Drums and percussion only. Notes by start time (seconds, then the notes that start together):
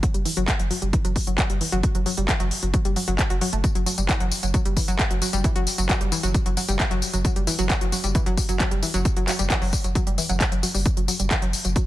0.03 kick, closed hi-hat
0.14 closed hi-hat
0.25 open hi-hat
0.37 closed hi-hat
0.48 kick, clap, closed hi-hat
0.59 closed hi-hat
0.71 open hi-hat
0.82 closed hi-hat
0.93 kick, closed hi-hat
1.05 closed hi-hat
1.16 kick, open hi-hat
1.27 closed hi-hat
1.38 kick, clap, closed hi-hat
1.50 closed hi-hat
1.61 open hi-hat
1.72 closed hi-hat
1.83 kick, closed hi-hat
1.95 closed hi-hat
2.06 open hi-hat
2.17 closed hi-hat
2.29 kick, clap, closed hi-hat
2.40 closed hi-hat
2.51 open hi-hat
2.63 closed hi-hat
2.74 kick, closed hi-hat
2.85 closed hi-hat
2.96 open hi-hat
3.08 closed hi-hat
3.19 kick, clap, closed hi-hat
3.30 closed hi-hat
3.41 open hi-hat
3.53 closed hi-hat
3.64 kick, closed hi-hat, tambourine
3.75 closed hi-hat
3.86 open hi-hat, tambourine
3.98 closed hi-hat, tambourine
4.09 kick, clap, closed hi-hat, tambourine
4.20 closed hi-hat
4.32 open hi-hat, tambourine
4.43 closed hi-hat, tambourine
4.54 kick, closed hi-hat, tambourine
4.65 closed hi-hat
4.77 kick, open hi-hat, tambourine
4.88 closed hi-hat, tambourine
4.99 kick, clap, closed hi-hat, tambourine
5.11 closed hi-hat
5.22 open hi-hat, tambourine
5.33 closed hi-hat, tambourine
5.44 kick, closed hi-hat, tambourine
5.56 closed hi-hat
5.67 open hi-hat, tambourine
5.78 closed hi-hat, tambourine
5.89 kick, clap, closed hi-hat, tambourine
6.01 closed hi-hat
6.12 open hi-hat, tambourine
6.23 closed hi-hat, tambourine
6.34 kick, closed hi-hat, tambourine
6.46 closed hi-hat
6.57 open hi-hat, tambourine
6.68 closed hi-hat, tambourine
6.80 kick, clap, closed hi-hat, tambourine
6.91 closed hi-hat
7.02 open hi-hat, tambourine
7.13 closed hi-hat, tambourine
7.25 kick, closed hi-hat, tambourine
7.36 closed hi-hat
7.47 open hi-hat, tambourine
7.59 closed hi-hat, tambourine
7.70 kick, clap, closed hi-hat, tambourine
7.81 closed hi-hat
7.92 open hi-hat, tambourine
8.04 closed hi-hat, tambourine
8.15 kick, closed hi-hat, tambourine
8.26 closed hi-hat
8.37 kick, open hi-hat, tambourine
8.49 closed hi-hat, tambourine
8.60 kick, clap, closed hi-hat, tambourine
8.71 closed hi-hat
8.83 open hi-hat, tambourine
8.94 closed hi-hat, tambourine
9.05 kick, closed hi-hat, tambourine
9.17 closed hi-hat
9.28 clap, open hi-hat, tambourine
9.39 closed hi-hat, tambourine
9.50 kick, clap, closed hi-hat, tambourine
9.62 open hi-hat
9.73 kick, open hi-hat, tambourine
9.84 closed hi-hat, tambourine
9.95 kick, closed hi-hat, tambourine
10.07 closed hi-hat
10.18 open hi-hat, tambourine
10.29 closed hi-hat, tambourine
10.40 kick, clap, closed hi-hat, tambourine
10.52 closed hi-hat
10.63 open hi-hat, tambourine
10.75 open hi-hat, tambourine
10.86 kick, closed hi-hat, tambourine
10.97 closed hi-hat
11.08 open hi-hat, tambourine
11.20 closed hi-hat, tambourine
11.31 kick, clap, closed hi-hat, tambourine
11.42 closed hi-hat
11.53 open hi-hat, tambourine
11.65 closed hi-hat, tambourine
11.76 kick, closed hi-hat, tambourine